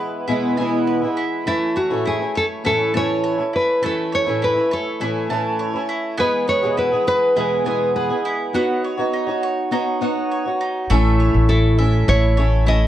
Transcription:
Already playing: steel-string acoustic guitar E3 G#3 B3 E4, mandolin B3 E4 G#5, nylon-string guitar G#4
0.00 mandolin B4
0.28 steel-string acoustic guitar E2 B2 E3 G#3 B3 E4, mandolin E4
0.57 steel-string acoustic guitar E2 B2 E3 G#3 B3 E4, mandolin G#5
0.87 mandolin B4
1.02 steel-string acoustic guitar E3 G#3 B3 E4
1.17 mandolin E4
1.45 steel-string acoustic guitar E3 A3 C#4 E4, mandolin A3 A5, nylon-string guitar E4
1.76 nylon-string guitar F#4, mandolin C#5
1.90 steel-string acoustic guitar A2 E3 A3 C#4 E4
2.06 mandolin E4, nylon-string guitar G#4
2.19 steel-string acoustic guitar A3 C#4 E4
2.35 nylon-string guitar A4, mandolin C#5
2.64 steel-string acoustic guitar A2 E3 A3 C#4 E4, mandolin E4, nylon-string guitar A4
2.93 steel-string acoustic guitar A2 E3 A3 C#4 E4, nylon-string guitar C#5, mandolin A5
3.24 mandolin C#5
3.38 steel-string acoustic guitar A3 C#4 E4
3.53 mandolin E4, nylon-string guitar B4
3.82 steel-string acoustic guitar E3 A3 C#4 E4, mandolin A3 A5
3.86 nylon-string guitar A4
4.12 mandolin C#5, nylon-string guitar C#5
4.26 steel-string acoustic guitar A2 E3 A3 C#4 E4
4.42 mandolin E4, nylon-string guitar B4
4.55 steel-string acoustic guitar A3 C#4 E4
4.71 nylon-string guitar A4, mandolin C#5
5.00 steel-string acoustic guitar A2 E3 A3 C#4 E4, mandolin E4
5.29 steel-string acoustic guitar A2 E3 A3 C#4 E4, mandolin A5
5.59 mandolin C#5
5.74 steel-string acoustic guitar A3 C#4 E4
5.89 mandolin E4
6.18 steel-string acoustic guitar E3 G#3 B3 G#4, mandolin B3 G#5, nylon-string guitar B4
6.48 mandolin B4, nylon-string guitar C#5
6.63 steel-string acoustic guitar E2 B2 E3 G#3 B3 G#4
6.77 mandolin E4, nylon-string guitar B4
6.92 steel-string acoustic guitar E3 G#3 B3 G#4
7.07 mandolin B4, nylon-string guitar B4
7.36 steel-string acoustic guitar E2 B2 E3 G#3 B3 G#4, mandolin E4
7.65 steel-string acoustic guitar E2 B2 E3 G#3 B3 G#4, mandolin G#5
7.96 nylon-string guitar G#4, mandolin B4
8.09 steel-string acoustic guitar E3 G#3 B3 G#4
8.25 mandolin E4
8.53 steel-string acoustic guitar B3 D#4 F#4 C#5, mandolin B3 F#5, nylon-string guitar F#4
8.84 mandolin C#5
8.97 steel-string acoustic guitar B3 D#4 F#4 C#5
9.13 mandolin D#4
9.27 steel-string acoustic guitar D#4 F#4 C#5
9.43 mandolin C#5
9.71 steel-string acoustic guitar B3 D#4 F#4 C#5, mandolin D#4
10.01 steel-string acoustic guitar B3 D#4 F#4 C#5, mandolin F#5
10.31 mandolin C#5
10.45 steel-string acoustic guitar D#4 F#4 C#5
10.60 mandolin D#4
10.90 upright bass A1, steel-string acoustic guitar A2 A3 C#4 E4 A4, mandolin A3 E5
11.20 mandolin C#5
11.34 upright bass A1
11.49 mandolin E4, nylon-string guitar A4
11.78 steel-string acoustic guitar A3 C#4 E4 A4, mandolin E5
12.08 upright bass A1, mandolin E4, nylon-string guitar C#5
12.37 steel-string acoustic guitar A3 C#4 E4 A4, mandolin C#5
12.66 steel-string acoustic guitar A3 C#4 E4 A4, mandolin E4, nylon-string guitar D#5

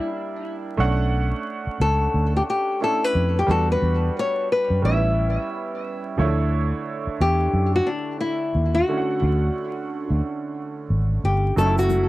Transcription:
Already playing: upright piano G3 A#3 D4 E4
0.77 fingered electric bass B1, upright piano A3 C#4 D4 F#5
1.67 muted fingered electric bass stroke
1.80 fingered electric bass C#2, nylon-string guitar A4
2.14 fingered electric bass D2
2.37 nylon-string guitar G4
2.50 nylon-string guitar G4
2.81 upright piano A3 C#4 D4 E4, nylon-string guitar A4
3.04 nylon-string guitar B4
3.15 fingered electric bass F2
3.39 nylon-string guitar G4
3.47 fingered electric bass E2, upright piano G3 B3 D4 F#4
3.51 nylon-string guitar A4
3.72 nylon-string guitar B4
3.82 fingered electric bass E2
4.19 nylon-string guitar C#5
4.52 nylon-string guitar B4
4.70 fingered electric bass F#2
4.82 fingered electric bass A1, upright piano G3 B3 C#4 D#4, nylon-string guitar E5
4.91 upright piano E4
6.18 fingered electric bass D2, upright piano F3 A3 E4 C#5
6.24 upright piano D3
7.07 muted fingered electric bass stroke
7.21 fingered electric bass E2, nylon-string guitar G4
7.53 fingered electric bass F#2
7.76 nylon-string guitar F#4
7.87 nylon-string guitar D4
8.20 nylon-string guitar E4
8.55 fingered electric bass D#2
8.75 nylon-string guitar F#4
8.89 upright piano D3 A3 C#4 E4
8.97 upright piano F#5
9.22 fingered electric bass D2
10.10 fingered electric bass D2, nylon-string guitar E4
10.90 fingered electric bass G#1
11.24 fingered electric bass G1, nylon-string guitar G4
11.56 fingered electric bass F#1, upright piano F#3 A3 C#4 D#4, nylon-string guitar A4, shaker
11.66 upright piano E4
11.78 nylon-string guitar F#4, shaker
11.90 high conga, shaker

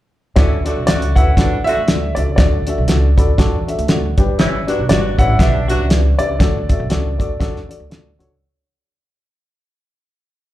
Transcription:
0.36 upright bass D2, grand piano D3 D4 F#4 A4 D5, saxophone section E3 C#4 E4, kick, snare, closed hi-hat
0.64 saxophone section D3 A3 F#4, grand piano D4 F#4 A4 D5, closed hi-hat
0.76 upright bass B1
0.86 upright bass C#2, saxophone section D3 A3 F#4, grand piano D4 F#4 A4 D5 E5, snare, closed hi-hat
1.02 closed hi-hat
1.16 upright bass D2, saxophone section E3 C#4 E4, grand piano D4 F#4 A4 B4 F#5, kick, closed hi-hat
1.37 upright bass E2, saxophone section A2 F#3 D4, grand piano D4 F#4 A4 B4, kick, snare, closed hi-hat
1.64 saxophone section D3 A3 F#4, grand piano D4 F#4 A4 E5, closed hi-hat
1.68 grand piano D5
1.77 upright bass D2
1.87 grand piano D4 F#4 A4 D5, snare, closed hi-hat
2.15 upright bass C#2, grand piano D4 F#4 A4 D5, closed hi-hat
2.36 upright bass D2, grand piano D3 D4 F#4 A4 D5, kick, snare, closed hi-hat
2.67 grand piano D4 F#4 A4 E5, closed hi-hat
2.78 upright bass B1
2.88 upright bass C#2, grand piano D4 F#4 A4 D5, snare, closed hi-hat
3.17 upright bass D2, grand piano D4 F#4 A4 D5 B5, kick, closed hi-hat
3.38 upright bass E2, grand piano D4 F#4 A4 D5 A5, kick, snare, closed hi-hat
3.67 grand piano D4 F#4 A4 E5, closed hi-hat
3.79 upright bass D2, closed hi-hat
3.88 grand piano D4 F#4 A4 D5 F#5, snare, closed hi-hat
4.17 upright bass G1, grand piano G2 D4 G4 B4 D5 G5, kick, closed hi-hat
4.39 saxophone section E3 C#4 E4, snare, closed hi-hat
4.67 saxophone section F#3 D4 F#4, grand piano D4 G4 B4 D5, closed hi-hat
4.79 upright bass B1
4.88 upright bass G1, saxophone section F#3 D4 F#4, grand piano D4 G4 B4 D5, snare, closed hi-hat
5.17 upright bass A1, saxophone section E3 C#4 E4, grand piano D4 G4 B4 C#5 F#5, kick, closed hi-hat
5.39 upright bass B1, saxophone section B2 G3 D4, grand piano D4 G4 B4 D5 E5, kick, snare, closed hi-hat
5.68 saxophone section F#3 D4 F#4, grand piano D4 G4 B4 E5, closed hi-hat
5.79 upright bass C#2
5.89 grand piano D4 G4 B4 D5, snare, closed hi-hat
6.18 upright bass C#2, grand piano D4 G4 B4 D5 E5, closed hi-hat
6.39 upright bass D2, grand piano D3 D4 F#4 A4 D5, kick, snare, closed hi-hat
6.69 grand piano D4 F#4 A4 E5, kick, closed hi-hat
6.80 upright bass B1
6.89 upright bass C#2, grand piano D4 F#4 A4 D5, snare, closed hi-hat
7.18 upright bass D2, grand piano D4 F#4 A4 D5, kick, closed hi-hat
7.40 upright bass E2, grand piano D4 F#4 A4 D5, kick, snare, closed hi-hat
7.56 snare
7.69 grand piano D4 F#4 A4 D5, closed hi-hat
7.80 upright bass D2
7.90 grand piano D4 F#4 A4 D5, snare, closed hi-hat
8.19 upright bass C#2, grand piano D4 F#4 A4 C#5, closed hi-hat

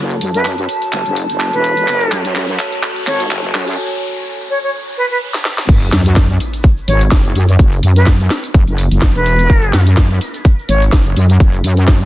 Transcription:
Already playing: wobble bass F#1, ambient pad F#4 A4 C#5 A5, riser
0.10 closed hi-hat, shaker
0.21 wobble bass F#2, open hi-hat
0.34 flute B4, closed hi-hat, shaker
0.45 clap, closed hi-hat, shaker
0.57 closed hi-hat, shaker
0.69 open hi-hat
0.82 closed hi-hat, shaker
0.92 wobble bass F#1, clap, closed hi-hat, shaker
1.05 wobble bass F#1, closed hi-hat, shaker
1.16 open hi-hat
1.29 wobble bass F#1, closed hi-hat, shaker
1.40 clap, closed hi-hat, shaker
1.53 wobble bass E1, flute B4, closed hi-hat, shaker
1.64 open hi-hat
1.77 closed hi-hat, shaker
1.88 wobble bass F#1, clap, closed hi-hat, shaker
2.01 closed hi-hat, shaker
2.12 wobble bass F#2, clap, open hi-hat
2.25 closed hi-hat, shaker
2.35 clap, closed hi-hat, shaker
2.49 closed hi-hat, shaker
2.59 clap, open hi-hat
2.72 closed hi-hat, shaker
2.83 clap, closed hi-hat, shaker
2.96 closed hi-hat, shaker
3.07 wobble bass G#1, flute C#5, clap, open hi-hat
3.20 closed hi-hat, shaker
3.30 wobble bass F#1, clap, closed hi-hat, shaker
3.43 closed hi-hat, shaker
3.54 wobble bass F#2, clap, open hi-hat
3.67 closed hi-hat, shaker
4.50 flute C#5
4.63 flute C#5
4.97 flute B4
5.11 flute B4
5.34 snare
5.45 snare
5.58 snare
5.68 wobble bass F#1, kick, closed hi-hat, crash, sub drop, shaker
5.82 closed hi-hat, shaker
5.92 wobble bass F#2, snare, open hi-hat
6.06 closed hi-hat, shaker
6.16 kick, snare, closed hi-hat, shaker
6.30 closed hi-hat, shaker
6.40 open hi-hat
6.53 closed hi-hat, shaker
6.63 kick, closed hi-hat, shaker
6.77 shaker
6.88 wobble bass G#1, flute C#5, open hi-hat
7.00 closed hi-hat, shaker
7.11 wobble bass F#1, kick, snare, closed hi-hat, shaker
7.25 closed hi-hat, shaker
7.35 wobble bass F#2, open hi-hat
7.48 closed hi-hat, shaker
7.59 wobble bass F#1, kick, closed hi-hat, shaker
7.72 closed hi-hat, shaker
7.83 wobble bass F#2, open hi-hat
7.96 flute B4, closed hi-hat, shaker
8.06 kick, snare, closed hi-hat, shaker
8.20 closed hi-hat, shaker
8.30 snare, open hi-hat
8.44 closed hi-hat, shaker
8.54 wobble bass F#1, kick, closed hi-hat, shaker
8.67 wobble bass F#1, closed hi-hat, shaker
8.78 open hi-hat
8.91 wobble bass F#1, closed hi-hat, shaker
9.02 kick, snare, closed hi-hat, shaker
9.15 wobble bass E1, flute B4, closed hi-hat, shaker
9.26 open hi-hat
9.39 closed hi-hat, shaker
9.50 wobble bass F#1, kick, closed hi-hat, shaker
9.62 closed hi-hat, shaker
9.73 wobble bass F#2, snare, open hi-hat
9.87 closed hi-hat, shaker
9.97 kick, snare, closed hi-hat, shaker
10.10 closed hi-hat, shaker
10.21 open hi-hat
10.34 closed hi-hat, shaker
10.44 kick, closed hi-hat, shaker
10.59 shaker
10.69 wobble bass G#1, flute C#5, open hi-hat
10.82 closed hi-hat, shaker
10.92 wobble bass F#1, kick, snare, closed hi-hat, shaker
11.06 closed hi-hat, shaker
11.16 wobble bass F#2, open hi-hat
11.29 closed hi-hat, shaker
11.40 wobble bass F#1, kick, closed hi-hat, shaker
11.53 closed hi-hat, shaker
11.64 wobble bass F#2, open hi-hat
11.77 closed hi-hat, shaker
11.88 kick, snare, closed hi-hat, shaker
12.01 closed hi-hat, shaker

